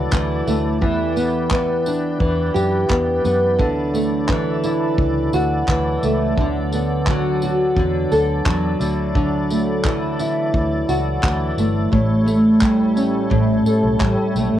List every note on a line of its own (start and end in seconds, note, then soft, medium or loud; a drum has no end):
0.00 0.16 D3 medium
0.00 0.12 E3 medium
0.00 0.78 F#3 medium
0.00 0.46 A3 medium
0.00 1.86 E4 medium
0.00 6.34 E4 medium
0.00 0.89 F#4 medium
0.00 0.79 A4 medium
0.00 11.89 D5 medium
0.12 0.41 D2 medium
0.12 0.81 E3 medium
0.12 kick loud
0.12 clap medium
0.12 clap loud
0.47 0.82 D2 loud
0.47 0.89 A3 medium
0.47 tambourine medium
0.82 2.17 E2 medium
0.82 2.19 E3 medium
0.82 3.57 G4 medium
0.82 3.57 B4 medium
0.82 kick medium
1.16 1.50 B3 medium
1.16 tambourine medium
1.51 2.89 B3 medium
1.51 kick loud
1.51 clap loud
1.51 clap medium
1.86 4.31 D4 medium
1.86 tambourine medium
2.20 2.49 E2 medium
2.20 4.28 E3 medium
2.20 kick loud
2.54 2.84 F#2 medium
2.54 3.66 G4 medium
2.54 tambourine medium
2.90 3.19 E2 loud
2.90 3.23 B3 medium
2.90 kick loud
2.90 clap medium
2.90 clap loud
3.24 3.60 F#2 medium
3.24 3.67 B3 medium
3.24 tambourine medium
3.59 4.95 D2 medium
3.59 5.71 D3 medium
3.59 11.89 F#3 medium
3.59 6.35 A4 medium
3.59 kick loud
3.94 6.03 A3 medium
3.94 tambourine medium
4.28 5.67 E3 medium
4.28 kick loud
4.28 clap medium
4.28 clap loud
4.63 6.45 E4 medium
4.63 tambourine medium
4.98 5.27 C#2 medium
4.98 kick loud
5.33 5.62 D2 medium
5.33 7.43 F#4 medium
5.33 tambourine medium
5.68 5.97 D2 medium
5.68 6.45 E3 medium
5.68 kick loud
5.68 clap medium
5.68 clap loud
6.03 6.31 C#2 medium
6.03 6.73 A3 medium
6.03 tambourine medium
6.36 7.73 D2 loud
6.36 7.77 D3 medium
6.36 8.78 B3 medium
6.36 8.77 A4 medium
6.36 kick loud
6.72 8.88 B3 medium
6.72 tambourine medium
7.07 8.47 F#3 medium
7.07 kick loud
7.07 clap loud
7.07 clap medium
7.42 9.88 F#4 medium
7.42 tambourine medium
7.76 8.05 E2 medium
7.76 8.80 D3 medium
7.76 kick loud
8.12 8.40 D2 medium
8.12 10.88 A4 medium
8.12 tambourine medium
8.46 8.75 E2 medium
8.46 9.85 F#3 medium
8.46 kick loud
8.46 clap medium
8.46 clap loud
8.79 10.23 D2 medium
8.79 9.14 D3 medium
8.79 14.60 E4 medium
8.79 14.60 A4 medium
8.79 tambourine medium
9.15 10.54 D3 medium
9.15 kick loud
9.50 11.58 A3 medium
9.50 tambourine medium
9.84 11.23 E3 medium
9.84 kick loud
9.84 clap medium
9.84 clap loud
10.19 12.96 E4 medium
10.19 tambourine medium
10.54 10.83 D2 medium
10.54 kick loud
10.89 11.17 C#2 medium
10.89 12.00 F#4 medium
10.89 tambourine medium
11.23 11.52 D2 medium
11.23 12.61 E3 medium
11.23 kick loud
11.23 clap medium
11.23 clap loud
11.57 11.86 G1 loud
11.57 12.26 A3 medium
11.57 tambourine medium
11.92 13.28 A1 loud
11.92 13.29 A2 medium
11.92 14.60 G3 medium
11.92 14.60 C#5 medium
11.92 kick loud
12.26 14.36 A3 medium
12.26 tambourine medium
12.61 14.00 G3 medium
12.61 kick loud
12.61 clap loud
12.61 clap medium
12.96 14.60 C#4 medium
12.96 tambourine medium
13.30 13.60 A1 loud
13.30 14.60 A2 medium
13.30 kick loud
13.66 14.60 A4 medium
13.66 muted fingered electric bass stroke soft
13.66 tambourine medium
13.83 13.98 B1 loud
14.00 14.15 A1 loud
14.00 14.60 G3 medium
14.00 kick loud
14.00 clap medium
14.00 clap loud
14.35 14.50 B1 loud
14.35 14.60 A3 medium
14.35 tambourine medium
14.53 14.60 A1 medium